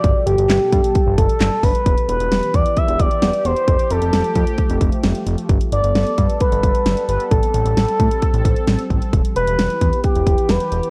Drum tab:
HH |x-xxx-xxx-xxx-ox|xxxxxxxxxxxxxxxx|xxxxxxxxxxxxxxxx|xxxxxxxxxxxxxxxx|
CP |----x-------x---|----------------|----------------|----------------|
SD |----o-------o---|----o-------o---|----o-------o---|----o-------o---|
BD |o-----o-o-o---o-|o-----o-o-o-----|o-----o-o-o-----|o-----o-o-o-----|

HH |xxxxxxxxxxxxxxxx|xxxxxxxxxxxxxxxx|
CP |----------------|----------------|
SD |----o-------o---|----o-------o---|
BD |o-----o-o-o---o-|o-----o-o-o-----|